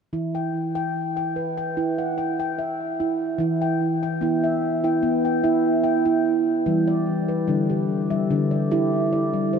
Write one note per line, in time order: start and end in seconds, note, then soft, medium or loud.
0.13 3.36 E3 soft
0.13 0.54 E4 medium
0.35 0.74 G5 soft
0.75 1.16 G5 medium
1.17 1.56 G5 soft
1.36 1.77 B4 soft
1.57 2.17 G5 soft
1.77 2.17 E4 medium
1.98 2.58 F#5 soft
2.18 2.38 G5 soft
2.40 2.80 G5 medium
2.59 3.21 E5 soft
3.00 3.39 E4 medium
3.38 4.01 E3 medium
3.38 3.81 E4 medium
3.62 4.02 G5 soft
4.03 4.63 G5 soft
4.21 4.84 B3 medium
4.21 4.63 E4 medium
4.44 5.04 E5 soft
4.84 5.25 E4 medium
4.84 5.24 G5 medium
5.03 5.34 B3 medium
5.25 5.82 G5 soft
5.44 6.04 E4 medium
5.44 5.85 E5 medium
5.84 6.47 G5 medium
6.05 6.47 E4 medium
6.66 7.29 E3 medium
6.66 7.07 G3 medium
6.88 7.48 D5 medium
7.29 7.89 B4 medium
7.48 8.11 D3 medium
7.48 7.89 G3 medium
7.70 8.30 G4 medium
8.10 8.51 G3 medium
8.10 8.71 E5 soft
8.31 8.62 D3 medium
8.51 9.12 D5 soft
8.71 9.59 E4 medium
8.71 9.12 G4 medium
9.13 9.59 D5 medium
9.33 9.59 G3 medium
9.53 9.59 C5 medium